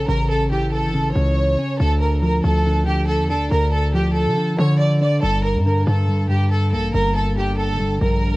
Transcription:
Already playing: clean electric guitar C#4
0.08 808-style bass A1, clean electric guitar C#3, violin section A#4
0.30 violin section A4
0.51 clean electric guitar E3, violin section G4
0.73 violin section A4
0.83 808-style bass G1
0.94 clean electric guitar C#3
1.00 808-style bass A1
1.15 808-style bass C#2, clean electric guitar C#3, violin section C#5
1.59 clean electric guitar C#4
1.80 808-style bass D2, clean electric guitar D3, violin section A4
2.01 violin section A#4
2.22 clean electric guitar F3, violin section A#4
2.44 808-style bass D2, violin section A4
2.66 clean electric guitar D3
2.87 clean electric guitar D3, violin section G4
3.08 violin section A4
3.19 808-style bass E2
3.30 clean electric guitar D4, violin section A4
3.35 808-style bass D2
3.51 808-style bass D2, clean electric guitar D3, violin section A#4
3.73 violin section A4
3.94 clean electric guitar F3, violin section G4
4.16 violin section A4
4.26 808-style bass D3
4.37 clean electric guitar D3
4.58 clean electric guitar D3, 808-style bass D3, violin section C#5
4.79 violin section D5
5.01 clean electric guitar D4, violin section D5
5.22 808-style bass G1, clean electric guitar G2, violin section A4
5.44 violin section A#4
5.55 808-style bass G2
5.66 clean electric guitar D3, violin section A#4
5.87 808-style bass G2, violin section A4
6.09 clean electric guitar G2
6.30 clean electric guitar G2, violin section G4
6.51 violin section A4
6.73 808-style bass A1, clean electric guitar A#3, violin section A4
6.94 808-style bass G1, clean electric guitar G2, violin section A#4
7.16 violin section A4
7.37 clean electric guitar D3, violin section G4
7.59 violin section A4
7.69 808-style bass F1
7.80 clean electric guitar G2
7.85 808-style bass G1
8.01 808-style bass A#1, clean electric guitar G2, violin section A#4

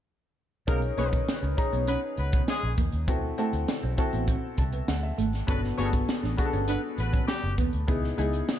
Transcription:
0.67 fingered electric bass B1, horn section A#3 A#4, clean electric guitar B3, grand piano C#4 D#4 G#4 A#4, kick, closed hi-hat
0.82 closed hi-hat
0.97 fingered electric bass B1, clean electric guitar A#3, grand piano C#4 D#4 G#4 B4, horn section C#4 C#5, closed hi-hat
1.13 muted clean electric guitar stroke, kick, closed hi-hat
1.28 snare, closed hi-hat
1.43 fingered electric bass C#2, clean electric guitar C#4, closed hi-hat
1.57 grand piano C#4 D#4 G#4 A#5, muted clean electric guitar stroke, kick, closed hi-hat
1.73 fingered electric bass B1, clean electric guitar B3, closed hi-hat
1.88 horn section B3 B4, clean electric guitar C#4, closed hi-hat
2.17 fingered electric bass C#2, horn section B3 B4, muted clean electric guitar stroke, closed hi-hat
2.32 clean electric guitar B3, kick, closed hi-hat
2.47 horn section G#3 G#4, snare, closed hi-hat
2.63 fingered electric bass A#1
2.78 fingered electric bass E2, clean electric guitar A#3, kick, closed hi-hat
2.92 fingered electric bass D#2, closed hi-hat
3.08 fingered electric bass D2, clean electric guitar B3, grand piano C4 E4 F#4 A4, kick, closed hi-hat
3.38 clean electric guitar A3, grand piano C4 E4 F#4 A4, closed hi-hat
3.53 fingered electric bass D2, muted clean electric guitar stroke, closed hi-hat
3.68 snare, closed hi-hat
3.83 fingered electric bass B1, clean electric guitar C4
3.98 grand piano C4 E4 F#4 A4, muted clean electric guitar stroke, kick, closed hi-hat
4.13 fingered electric bass A1, clean electric guitar B3, closed hi-hat
4.28 clean electric guitar C4, kick, closed hi-hat
4.58 fingered electric bass C2, grand piano A5, muted clean electric guitar stroke, kick, closed hi-hat
4.73 clean electric guitar B3, closed hi-hat
4.88 fingered electric bass D2, grand piano F#5, snare, closed hi-hat
5.03 grand piano E5
5.18 fingered electric bass G#1, clean electric guitar A3, closed hi-hat
5.33 snare, closed hi-hat
5.47 fingered electric bass G1, grand piano B3 D4 F#4 A4, horn section B3 B4, clean electric guitar C#4, kick, closed hi-hat
5.64 snare
5.77 fingered electric bass G1, grand piano B3 D4 F#4 G#4, clean electric guitar B3, horn section C#4 C#5, closed hi-hat
5.85 grand piano A4
5.93 muted clean electric guitar stroke, kick, closed hi-hat
6.09 snare, closed hi-hat
6.23 fingered electric bass A1, clean electric guitar D4, snare
6.37 grand piano B3 D4 F#4 G#4, muted clean electric guitar stroke, kick, closed hi-hat
6.45 grand piano A4
6.53 fingered electric bass G1, clean electric guitar C#4, closed hi-hat
6.68 horn section B3 B4, clean electric guitar D4, closed hi-hat
6.98 fingered electric bass A1, horn section B3 B4, muted clean electric guitar stroke, closed hi-hat
7.13 clean electric guitar C#4, kick, closed hi-hat
7.27 horn section G3 G4, snare, closed hi-hat
7.43 fingered electric bass F#1
7.58 fingered electric bass D#2, clean electric guitar B3, kick, closed hi-hat
7.73 fingered electric bass D2, closed hi-hat
7.88 fingered electric bass C#2, grand piano B3 D#4 E4 G#4, clean electric guitar B3, kick, closed hi-hat
8.04 snare
8.18 fingered electric bass C#2, clean electric guitar G#3, grand piano B3 D#4 E4 G#4, closed hi-hat
8.33 muted clean electric guitar stroke, closed hi-hat
8.48 snare, closed hi-hat

